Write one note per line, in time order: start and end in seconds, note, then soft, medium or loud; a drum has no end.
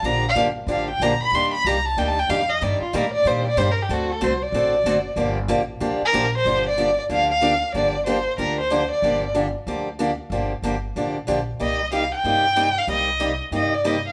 0.03 0.34 A#1 medium
0.03 0.25 D3 medium
0.03 0.24 F3 medium
0.03 0.25 A#3 medium
0.03 0.25 D4 medium
0.03 0.25 G4 medium
0.03 0.25 A#5 medium
0.29 0.35 F5 loud
0.35 0.66 G1 medium
0.35 0.47 D3 medium
0.35 0.47 F3 medium
0.35 0.47 A#3 loud
0.35 0.47 D4 medium
0.35 0.47 G4 loud
0.67 0.98 A1 medium
0.67 0.88 D3 medium
0.67 0.89 F3 medium
0.67 0.89 A#3 medium
0.67 0.89 D4 medium
0.67 0.89 G4 medium
0.71 0.88 F5 medium
0.90 1.04 G5 medium
1.00 1.18 A#1 medium
1.00 1.12 D3 medium
1.00 1.12 F3 medium
1.00 1.12 A#3 medium
1.00 1.12 D4 loud
1.00 1.13 G4 medium
1.00 1.21 A#5 medium
1.20 1.36 B5 medium
1.20 muted upright bass stroke soft
1.32 1.63 D#2 medium
1.32 1.53 D#3 medium
1.32 1.54 G3 medium
1.32 1.54 A#3 medium
1.32 1.54 D4 medium
1.32 1.54 G4 medium
1.32 1.53 C6 medium
1.54 1.68 B5 loud
1.65 1.96 C2 medium
1.65 1.76 D#3 medium
1.65 1.77 G3 medium
1.65 1.77 A#3 medium
1.65 1.76 D4 medium
1.65 1.77 G4 medium
1.65 1.87 A#5 medium
1.86 2.00 A5 medium
1.97 2.28 D2 medium
1.97 2.17 D#3 medium
1.97 2.17 G3 medium
1.97 2.17 A#3 medium
1.97 2.18 D4 medium
1.97 2.18 G4 medium
1.97 2.10 G5 medium
2.08 2.21 A5 loud
2.19 2.32 G5 medium
2.29 2.60 F2 medium
2.29 2.40 D#3 medium
2.29 2.40 G3 medium
2.29 2.40 A#3 medium
2.29 2.40 D4 medium
2.29 2.41 G4 medium
2.29 2.51 F5 medium
2.49 2.65 D#5 medium
2.61 2.79 G2 medium
2.61 2.81 D#3 medium
2.61 2.81 G3 medium
2.61 2.82 A#3 medium
2.61 2.81 D4 medium
2.61 2.82 G4 medium
2.61 2.81 D5 medium
2.81 2.97 F4 medium
2.81 muted upright bass stroke soft
2.93 3.24 A2 medium
2.93 3.04 D#3 medium
2.93 3.04 G3 medium
2.93 3.04 A#3 medium
2.93 3.04 D4 medium
2.93 3.05 G4 medium
2.93 3.13 A#4 medium
3.14 3.29 D5 loud
3.25 3.56 A#2 medium
3.25 3.45 D#3 medium
3.25 3.46 G3 medium
3.25 3.46 A#3 medium
3.25 3.46 D4 medium
3.25 3.46 G4 medium
3.25 3.45 C5 medium
3.47 3.60 D5 loud
3.57 3.88 G2 medium
3.57 3.68 D#3 medium
3.57 3.68 G3 medium
3.57 3.68 A#3 loud
3.57 3.68 D4 loud
3.57 3.68 G4 loud
3.57 3.73 C5 medium
3.71 3.84 A#4 medium
3.83 3.95 G4 medium
3.89 4.20 D2 medium
3.89 4.09 D3 medium
3.89 4.10 A3 medium
3.89 4.10 C4 medium
3.89 4.10 F#4 medium
3.89 4.10 A4 medium
3.93 4.13 F#4 medium
4.12 4.25 A4 medium
4.21 4.52 C2 medium
4.21 4.32 D3 medium
4.21 4.32 A3 loud
4.21 4.32 C4 medium
4.21 4.32 F#4 medium
4.21 4.33 A4 medium
4.21 4.44 C5 medium
4.43 5.18 D5 loud
4.52 4.84 A1 medium
4.52 4.74 D3 medium
4.52 4.74 A3 medium
4.52 4.74 C4 medium
4.52 4.74 F#4 medium
4.52 4.75 A4 medium
4.84 5.15 F#1 medium
4.84 4.96 D3 medium
4.84 4.97 A3 medium
4.84 4.97 C4 loud
4.84 4.97 F#4 loud
4.84 4.97 A4 loud
5.16 5.48 G1 medium
5.16 5.37 D3 medium
5.16 5.37 F3 medium
5.16 5.38 A#3 medium
5.16 5.38 D4 medium
5.16 5.38 G4 medium
5.48 5.80 A1 medium
5.48 5.60 D3 medium
5.48 5.60 F3 medium
5.48 5.60 A#3 medium
5.48 5.60 D4 medium
5.48 5.60 G4 loud
5.80 5.99 C2 medium
5.80 6.01 D3 medium
5.80 6.01 F3 medium
5.80 6.01 A#3 medium
5.80 6.02 D4 medium
5.80 6.01 G4 medium
6.01 muted upright bass stroke soft
6.05 6.33 A#4 loud
6.13 6.45 A#1 medium
6.13 6.24 D3 medium
6.13 6.24 F3 loud
6.13 6.25 A#3 medium
6.13 6.25 D4 medium
6.13 6.25 G4 loud
6.38 6.65 C5 loud
6.45 6.97 G1 medium
6.45 6.66 D3 medium
6.45 6.66 F3 medium
6.45 6.66 A#3 medium
6.45 6.66 D4 medium
6.45 6.66 G4 medium
6.69 6.97 D5 medium
6.77 6.88 D3 medium
6.77 6.89 F3 medium
6.77 6.89 A#3 medium
6.77 6.89 D4 medium
6.77 6.89 G4 medium
6.99 7.04 D5 medium
7.09 7.61 D2 medium
7.09 7.30 D3 medium
7.09 7.30 F3 medium
7.09 7.30 A#3 medium
7.09 7.30 D4 medium
7.09 7.31 G4 medium
7.09 7.30 F5 medium
7.31 7.72 F5 loud
7.41 7.53 D3 medium
7.41 7.53 F3 medium
7.41 7.53 A#3 medium
7.41 7.53 D4 loud
7.41 7.53 G4 medium
7.74 8.25 G1 medium
7.74 7.95 D3 medium
7.74 7.95 F3 medium
7.74 7.95 A#3 medium
7.74 7.95 D4 medium
7.74 7.95 G4 medium
7.74 8.04 D5 medium
8.06 8.17 D3 medium
8.06 8.17 F3 medium
8.06 8.17 A#3 medium
8.06 8.17 D4 medium
8.06 8.18 G4 medium
8.06 8.36 C5 medium
8.38 8.89 D2 medium
8.38 8.58 D3 medium
8.38 8.58 F3 medium
8.38 8.59 A#3 medium
8.38 8.59 D4 medium
8.38 8.59 G4 medium
8.38 8.57 A#4 medium
8.60 8.89 C5 medium
8.70 8.81 D3 medium
8.70 8.82 F3 medium
8.70 8.82 A#3 medium
8.70 8.82 D4 medium
8.70 8.82 G4 medium
8.91 9.32 D5 medium
9.02 9.54 G1 medium
9.02 9.23 D3 medium
9.02 9.23 F3 medium
9.02 9.24 A#3 medium
9.02 9.24 D4 medium
9.02 9.24 G4 medium
9.34 9.46 D3 medium
9.34 9.45 F3 medium
9.34 9.46 A#3 medium
9.34 9.46 D4 medium
9.34 9.46 G4 medium
9.67 10.18 D2 medium
9.67 9.87 D3 medium
9.67 9.87 F3 medium
9.67 9.87 A#3 medium
9.67 9.88 D4 medium
9.67 9.88 G4 medium
9.99 10.10 D3 medium
9.99 10.10 F3 medium
9.99 10.10 A#3 medium
9.99 10.10 D4 medium
9.99 10.11 G4 medium
10.30 10.56 G1 medium
10.30 10.52 D3 medium
10.30 10.52 F3 medium
10.30 10.52 A#3 medium
10.30 10.52 D4 medium
10.30 10.52 G4 medium
10.62 10.90 G1 medium
10.62 10.74 D3 medium
10.62 10.74 F3 medium
10.62 10.74 A#3 medium
10.62 10.75 D4 medium
10.62 10.75 G4 medium
10.96 11.23 A1 medium
10.96 11.16 D3 medium
10.96 11.16 F3 medium
10.96 11.16 A#3 medium
10.96 11.17 D4 medium
10.96 11.17 G4 medium
11.27 11.55 A#1 medium
11.27 11.38 D3 medium
11.27 11.39 F3 medium
11.27 11.39 A#3 medium
11.27 11.39 D4 medium
11.27 11.39 G4 medium
11.60 12.11 C2 medium
11.60 11.80 C3 medium
11.60 11.80 G3 medium
11.60 11.80 A#3 medium
11.60 11.80 D#4 medium
11.60 11.80 G4 medium
11.60 11.91 D#5 medium
11.92 12.02 C3 medium
11.92 12.03 G3 medium
11.92 12.03 A#3 medium
11.92 12.03 D#4 medium
11.92 12.03 G4 medium
11.92 12.12 F5 medium
12.15 12.80 G5 loud
12.24 12.75 G2 medium
12.24 12.44 C3 medium
12.24 12.45 G3 medium
12.24 12.45 A#3 medium
12.24 12.45 D#4 medium
12.24 12.45 G4 medium
12.56 12.67 C3 medium
12.56 12.67 G3 medium
12.56 12.67 A#3 medium
12.56 12.67 D#4 medium
12.56 12.67 G4 medium
12.78 12.89 F5 medium
12.87 13.39 C2 medium
12.87 13.08 C3 medium
12.87 13.08 G3 medium
12.87 13.08 A#3 medium
12.87 13.09 D#4 medium
12.87 13.09 G4 medium
12.87 13.38 D#5 medium
13.20 13.31 C3 medium
13.20 13.31 G3 medium
13.20 13.31 A#3 medium
13.20 13.31 D#4 medium
13.20 13.31 G4 medium
13.51 14.03 G2 medium
13.51 13.72 C3 medium
13.51 13.72 G3 medium
13.51 13.73 A#3 medium
13.51 13.73 D#4 medium
13.51 13.73 G4 medium
13.56 13.76 D#5 medium
13.74 13.88 D5 medium
13.85 13.95 C3 medium
13.85 13.96 G3 medium
13.85 13.96 A#3 medium
13.85 13.96 D#4 loud
13.85 13.96 G4 loud
13.85 14.05 D#5 medium
14.08 14.12 F5 medium